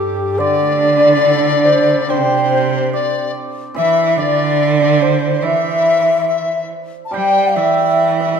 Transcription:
0.00 0.40 G2 medium
0.00 0.40 G4 medium
0.00 3.08 G4 medium
0.00 2.82 A4 soft
0.38 2.93 D3 medium
0.38 2.10 D3 medium
0.38 2.12 D5 loud
0.38 1.66 D5 loud
0.38 0.47 D5 medium
0.47 0.55 D5 medium
0.55 0.63 D5 medium
0.61 2.31 A3 soft
0.61 0.71 D5 medium
0.71 0.78 D5 medium
0.78 0.84 D5 medium
0.83 2.52 D4 soft
0.83 0.93 D5 medium
0.93 1.01 D5 medium
1.01 2.72 E4 soft
1.01 1.10 D5 medium
1.10 1.16 D5 soft
1.17 1.26 D5 medium
1.26 2.94 A4 soft
1.26 1.31 D5 soft
1.32 1.38 D5 medium
1.38 1.45 D5 soft
1.45 1.51 D5 medium
1.51 1.58 D5 medium
1.58 1.65 D5 medium
1.65 2.07 C5 medium
1.65 1.72 D5 medium
1.72 1.79 D5 medium
1.80 1.90 D5 medium
1.90 2.93 D5 medium
2.08 3.34 C3 medium
2.08 3.76 C3 medium
2.08 3.30 C5 medium
2.08 2.17 C5 medium
2.08 2.93 C5 medium
2.18 2.24 C5 medium
2.24 2.31 C5 medium
2.31 2.38 C5 medium
2.38 2.45 C5 medium
2.46 2.54 C5 soft
2.54 2.61 C5 medium
2.62 2.69 C5 soft
2.69 2.75 C5 medium
2.75 5.01 C5 medium
2.93 4.17 D5 medium
2.93 3.32 D5 medium
3.74 6.27 E3 medium
3.74 4.19 E3 medium
3.74 5.42 E5 medium
3.74 4.20 E5 loud
3.74 4.10 E5 loud
4.10 4.21 E5 medium
4.17 5.44 D3 loud
4.17 4.81 D5 medium
4.17 4.94 D5 loud
4.81 7.27 D5 medium
4.81 5.04 D5 medium
4.94 5.04 D5 medium
5.02 7.66 C5 medium
5.02 5.45 C5 medium
5.02 5.47 C5 medium
5.42 6.70 E3 medium
5.42 7.56 E5 medium
5.42 6.28 E5 loud
5.42 6.72 E5 loud
6.28 6.68 E5 medium
7.05 7.14 A5 medium
7.05 7.15 A5 medium
7.11 8.40 G3 medium
7.11 7.57 G3 medium
7.11 7.55 G5 loud
7.11 7.58 G5 loud
7.11 7.48 G5 medium
7.49 8.40 G5 medium
7.54 8.40 E3 medium
7.54 8.39 E5 loud
7.54 8.20 E5 medium
7.54 8.19 E5 medium
8.20 8.40 E5 medium
8.20 8.26 E5 medium
8.26 8.34 E5 medium
8.34 8.40 E5 medium

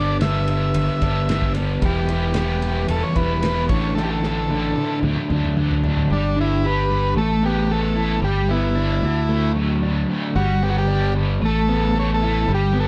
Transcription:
0.00 0.71 G1 loud
0.00 0.20 G2 medium
0.00 0.20 D3 medium
0.00 0.21 G3 medium
0.00 0.22 B3 medium
0.00 0.22 D4 medium
0.00 0.18 D5 loud
0.21 1.29 G2 medium
0.21 1.27 D3 medium
0.21 1.02 G3 medium
0.21 1.02 B3 medium
0.21 1.01 D4 medium
0.21 0.49 E5 loud
0.21 snare loud
0.21 ride medium
0.48 1.53 E5 medium
0.48 ride medium
0.74 0.88 G1 medium
0.74 ride medium
1.02 1.78 G1 medium
1.02 1.28 G3 medium
1.02 1.29 B3 medium
1.02 1.29 D4 medium
1.02 kick medium
1.02 ride medium
1.29 1.81 D3 medium
1.29 1.56 G3 medium
1.29 1.55 B3 medium
1.29 1.54 D4 medium
1.29 snare loud
1.29 ride medium
1.42 kick medium
1.55 1.82 G3 medium
1.55 1.81 B3 medium
1.55 1.81 D4 medium
1.55 snare soft
1.55 ride medium
1.81 2.85 E1 loud
1.81 2.34 E3 medium
1.81 2.10 G3 medium
1.81 2.09 B3 medium
1.81 2.09 E4 medium
1.81 2.87 G4 medium
1.81 kick loud
1.81 ride medium
2.09 2.35 G3 medium
2.09 2.35 B3 medium
2.09 2.37 E4 medium
2.09 ride medium
2.34 3.41 E3 medium
2.34 3.17 G3 medium
2.34 3.16 B3 medium
2.34 3.15 E4 loud
2.34 snare loud
2.34 ride medium
2.62 ride medium
2.88 3.02 E1 medium
2.88 3.04 A4 medium
2.88 ride medium
3.03 3.17 C#5 loud
3.16 3.67 E1 medium
3.16 3.42 G3 medium
3.16 3.43 B3 medium
3.16 3.44 E4 medium
3.16 3.66 B4 medium
3.16 kick medium
3.16 ride medium
3.42 3.68 E3 medium
3.42 3.69 G3 medium
3.42 3.69 B3 medium
3.42 3.69 E4 medium
3.42 snare loud
3.42 ride medium
3.69 4.72 A1 medium
3.69 3.96 A2 medium
3.69 3.96 D3 medium
3.69 3.97 E3 medium
3.69 3.97 A3 medium
3.69 3.97 D4 medium
3.69 3.94 C#5 medium
3.69 kick loud
3.69 ride medium
3.95 4.48 A2 medium
3.95 4.49 D3 medium
3.95 4.25 E3 medium
3.95 4.24 A3 medium
3.95 4.22 D4 medium
3.95 4.02 A4 medium
3.95 snare medium
4.03 4.10 G4 medium
4.10 4.99 A4 medium
4.23 4.49 E3 medium
4.23 4.50 A3 medium
4.23 4.50 D4 medium
4.23 snare medium
4.49 5.02 A2 medium
4.49 5.02 D3 medium
4.49 5.02 E3 medium
4.49 5.02 A3 medium
4.49 5.02 D4 loud
4.49 high tom medium
4.76 high tom medium
5.03 5.16 D2 medium
5.03 5.55 D3 medium
5.03 5.31 F#3 medium
5.03 5.29 A3 loud
5.03 5.28 D4 loud
5.03 mid tom medium
5.16 mid tom medium
5.29 6.06 D2 medium
5.29 5.56 F#3 medium
5.29 5.57 A3 medium
5.29 5.58 D4 medium
5.29 mid tom medium
5.44 mid tom medium
5.57 6.09 D3 medium
5.57 5.85 F#3 medium
5.57 5.83 A3 medium
5.57 5.83 D4 medium
5.57 mid tom medium
5.71 floor tom medium
5.84 6.10 F#3 medium
5.84 6.09 A3 medium
5.84 6.09 D4 medium
5.84 floor tom medium
5.97 floor tom medium
6.10 7.13 G1 medium
6.10 6.89 G3 medium
6.10 6.39 D4 medium
6.36 7.17 D4 medium
6.41 6.66 E4 medium
6.65 7.17 G4 medium
6.65 7.15 B4 loud
6.90 7.16 G3 medium
7.16 8.19 A1 medium
7.16 8.21 A3 medium
7.16 7.45 A4 loud
7.43 8.23 B3 medium
7.43 7.72 G4 medium
7.70 8.23 A4 medium
7.70 8.20 A4 medium
7.95 8.23 E4 medium
8.22 8.98 G1 loud
8.22 9.02 G3 medium
8.22 8.51 G4 medium
8.49 9.03 B3 medium
8.49 9.53 E4 medium
8.75 9.02 D4 medium
9.02 10.05 D2 medium
9.02 10.36 D3 medium
9.29 10.09 A3 medium
9.56 10.36 F#3 medium
9.83 10.36 D4 medium
10.10 10.36 A3 medium
10.36 11.38 G1 loud
10.36 11.14 G3 medium
10.36 10.63 F#4 medium
10.62 11.42 B3 medium
10.62 10.69 G4 loud
10.70 10.77 F#4 medium
10.78 11.14 G4 loud
10.88 11.42 D4 medium
11.15 11.41 G3 medium
11.42 12.44 A1 medium
11.42 12.47 A3 medium
11.42 11.98 A4 medium
11.69 12.48 B3 medium
11.95 12.48 A4 medium
11.99 12.11 C#5 loud
12.14 12.52 A4 medium
12.22 12.48 E4 medium
12.48 12.88 G1 loud
12.48 12.88 G3 medium
12.54 12.79 G4 medium
12.74 12.88 B3 medium
12.80 12.88 A4 medium

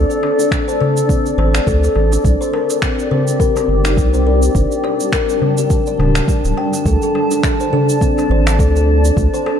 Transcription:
0.00 2.21 D4 medium
0.00 2.21 A4 medium
0.00 4.51 D5 medium
0.10 0.37 A4 medium
0.10 shaker soft
0.23 darbuka tek medium
0.39 0.51 D4 medium
0.39 shaker medium
0.51 finger snap medium
0.51 kick loud
0.51 shaker medium
0.68 0.79 C5 medium
0.68 shaker soft
0.81 0.90 A4 medium
0.81 darbuka ka soft
0.81 darbuka dum medium
0.97 shaker medium
1.09 1.37 C4 medium
1.09 kick loud
1.09 shaker medium
1.26 shaker soft
1.38 1.60 A1 loud
1.38 1.66 C5 medium
1.38 darbuka tek medium
1.55 finger snap medium
1.55 shaker medium
1.67 1.89 D2 medium
1.67 1.82 A4 loud
1.67 kick loud
1.67 shaker medium
1.83 2.11 A4 medium
1.83 darbuka ka soft
1.83 shaker soft
1.95 2.18 A1 medium
1.95 darbuka tek medium
2.12 2.24 D4 medium
2.12 darbuka ka soft
2.12 shaker medium
2.24 2.36 C2 loud
2.24 4.54 C4 medium
2.24 4.54 G4 medium
2.24 kick loud
2.24 shaker medium
2.41 2.52 C5 medium
2.41 shaker soft
2.53 2.63 A#4 medium
2.53 darbuka tek medium
2.70 darbuka tek soft
2.70 shaker medium
2.82 3.10 C4 medium
2.82 finger snap medium
2.82 kick loud
2.82 shaker medium
2.99 shaker soft
3.11 3.39 C5 medium
3.11 darbuka ka soft
3.11 darbuka dum medium
3.28 shaker medium
3.40 3.55 A#4 loud
3.40 kick loud
3.40 shaker medium
3.56 3.83 A#4 medium
3.56 darbuka ka medium
3.56 darbuka tek medium
3.56 shaker soft
3.68 3.98 G1 medium
3.68 darbuka ka soft
3.85 3.97 D#4 medium
3.85 finger snap medium
3.85 shaker medium
3.97 4.50 C2 medium
3.97 kick loud
3.97 shaker medium
4.14 4.25 C5 medium
4.14 shaker soft
4.27 4.36 A#4 medium
4.43 shaker medium
4.55 4.67 G1 loud
4.55 6.84 G3 medium
4.55 4.83 D4 medium
4.55 9.60 D4 medium
4.55 9.60 A5 medium
4.55 kick loud
4.55 shaker medium
4.72 shaker soft
4.84 5.12 D5 medium
4.84 darbuka tek medium
5.00 shaker medium
5.12 5.28 A#4 loud
5.12 finger snap medium
5.12 kick loud
5.12 shaker medium
5.29 5.57 A#4 medium
5.29 shaker soft
5.42 darbuka ka soft
5.42 darbuka dum medium
5.58 5.71 G4 medium
5.58 shaker medium
5.70 kick loud
5.70 shaker soft
5.86 5.99 D5 medium
5.86 shaker soft
5.99 6.21 D1 loud
5.99 6.15 D4 medium
5.99 darbuka tek medium
5.99 darbuka dum medium
6.15 finger snap medium
6.15 shaker medium
6.28 6.44 G4 medium
6.28 kick loud
6.28 shaker medium
6.44 6.54 D1 loud
6.44 darbuka ka soft
6.44 shaker soft
6.57 6.67 G5 medium
6.57 darbuka tek medium
6.73 darbuka ka soft
6.73 shaker medium
6.85 6.98 D2 medium
6.85 7.02 A4 medium
6.85 9.15 D5 medium
6.85 kick medium
6.85 shaker medium
7.02 7.30 A4 medium
7.02 shaker soft
7.15 darbuka tek medium
7.31 7.43 D4 medium
7.31 darbuka tek soft
7.31 shaker medium
7.43 finger snap medium
7.43 kick loud
7.43 shaker medium
7.60 7.72 C5 medium
7.60 shaker soft
7.73 7.82 A4 medium
7.73 darbuka ka soft
7.73 darbuka dum medium
7.89 shaker medium
8.01 8.30 C4 medium
8.01 kick loud
8.01 shaker medium
8.18 darbuka ka medium
8.18 darbuka tek medium
8.18 shaker soft
8.30 8.60 A1 medium
8.30 8.58 C5 medium
8.30 darbuka ka soft
8.47 finger snap medium
8.47 shaker medium
8.59 9.11 D2 medium
8.59 8.75 A4 medium
8.59 kick loud
8.59 shaker medium
8.76 9.03 A4 medium
8.76 shaker soft
9.05 9.17 D4 medium
9.05 shaker medium
9.17 9.29 D2 loud
9.17 kick medium
9.17 shaker soft
9.34 9.45 C5 medium
9.34 shaker soft
9.46 9.55 A4 medium
9.46 darbuka tek medium

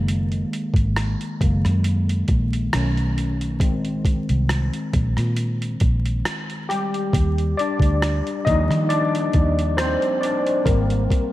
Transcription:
0.00 0.43 F#1 medium
0.00 0.24 D#3 soft
0.00 0.25 G#3 soft
0.00 0.25 A#3 soft
0.08 closed hi-hat medium
0.32 closed hi-hat soft
0.53 closed hi-hat medium
0.74 1.14 G#1 medium
0.74 kick medium
0.74 closed hi-hat soft
0.96 cross-stick medium
0.96 closed hi-hat medium
1.21 closed hi-hat soft
1.41 1.62 F#1 medium
1.41 1.81 D#3 soft
1.41 1.81 G#3 soft
1.41 1.81 A#3 soft
1.41 kick medium
1.41 closed hi-hat medium
1.65 2.22 F#2 medium
1.65 cross-stick soft
1.65 closed hi-hat soft
1.84 closed hi-hat medium
2.09 closed hi-hat soft
2.28 2.68 A#1 medium
2.28 kick medium
2.28 closed hi-hat medium
2.53 closed hi-hat soft
2.73 3.61 B1 medium
2.73 3.57 D#3 soft
2.73 3.57 A3 soft
2.73 3.57 C#4 medium
2.73 cross-stick loud
2.73 closed hi-hat medium
2.97 closed hi-hat soft
3.18 closed hi-hat medium
3.41 closed hi-hat soft
3.60 4.00 A#1 medium
3.60 4.21 D#3 soft
3.60 4.21 G#3 soft
3.60 4.21 C4 medium
3.60 kick loud
3.60 closed hi-hat medium
3.85 closed hi-hat soft
4.05 kick medium
4.05 closed hi-hat medium
4.29 4.69 C2 medium
4.29 closed hi-hat soft
4.49 cross-stick medium
4.49 closed hi-hat medium
4.73 closed hi-hat soft
4.93 5.15 A#1 medium
4.93 kick medium
4.93 closed hi-hat medium
5.17 5.75 A#2 medium
5.17 cross-stick soft
5.17 closed hi-hat soft
5.37 closed hi-hat medium
5.62 closed hi-hat soft
5.80 6.21 A#1 medium
5.80 kick medium
5.80 closed hi-hat medium
6.06 closed hi-hat soft
6.25 cross-stick loud
6.25 closed hi-hat medium
6.50 closed hi-hat soft
6.69 7.55 G3 medium
6.69 7.60 G4 medium
6.69 cross-stick soft
6.69 closed hi-hat medium
6.94 closed hi-hat soft
7.13 7.53 D#2 medium
7.13 kick loud
7.13 closed hi-hat medium
7.38 closed hi-hat soft
7.57 8.43 D4 medium
7.57 8.42 D5 medium
7.57 closed hi-hat medium
7.80 8.20 D2 medium
7.80 kick medium
7.80 closed hi-hat soft
8.02 cross-stick medium
8.02 closed hi-hat medium
8.27 closed hi-hat soft
8.45 8.68 D#2 medium
8.45 10.63 F3 soft
8.45 10.63 G3 soft
8.45 10.64 A#3 medium
8.45 8.86 D#5 medium
8.45 kick medium
8.45 closed hi-hat medium
8.49 8.89 D#4 medium
8.70 9.28 D#3 medium
8.70 cross-stick soft
8.70 closed hi-hat soft
8.89 9.75 D4 medium
8.89 9.80 D5 medium
8.89 closed hi-hat medium
9.15 closed hi-hat soft
9.33 9.95 D#2 medium
9.33 kick medium
9.33 closed hi-hat medium
9.59 closed hi-hat soft
9.77 10.23 C5 medium
9.77 cross-stick loud
9.77 closed hi-hat medium
9.82 10.21 C4 medium
10.02 closed hi-hat soft
10.21 10.62 D5 medium
10.21 closed hi-hat medium
10.25 10.65 D4 medium
10.46 closed hi-hat soft
10.65 11.06 G#1 medium
10.65 11.27 G3 soft
10.65 11.32 A#3 medium
10.65 11.32 A#4 medium
10.65 kick loud
10.65 closed hi-hat medium
10.69 11.28 C4 medium
10.90 closed hi-hat soft
11.11 kick medium
11.11 closed hi-hat medium

